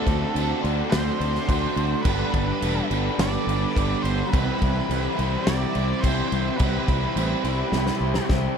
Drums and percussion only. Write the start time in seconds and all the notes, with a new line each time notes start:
0.07 kick, crash
0.36 crash
0.65 crash
0.92 snare, crash
1.21 crash
1.35 snare
1.49 kick, crash
1.77 crash
2.05 kick, crash
2.34 kick, crash
2.62 crash
2.91 crash
3.19 snare, crash
3.49 crash
3.76 kick, crash
4.05 crash
4.33 kick, crash
4.62 kick, crash
4.91 crash
5.19 crash
5.47 snare, crash
5.75 crash
6.04 kick, crash
6.32 crash
6.59 kick, crash
6.88 kick, crash
7.17 crash
7.45 crash
7.73 snare
7.87 snare
8.14 snare
8.29 kick, snare